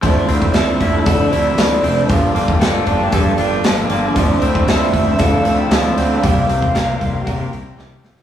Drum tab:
HH |o-o-o-o-o-o-o-o-|o-o-o-o-o-o-o-o-|o-o-o-o-o-o-o-o-|o-o-o-o-o-o-----|
SD |----o-------o---|----o-------o---|----o-------o---|----o-------o-oo|
BD |o--o--o-o-------|o--o--o-o-------|o--o--o-o-------|o--o--o-o-------|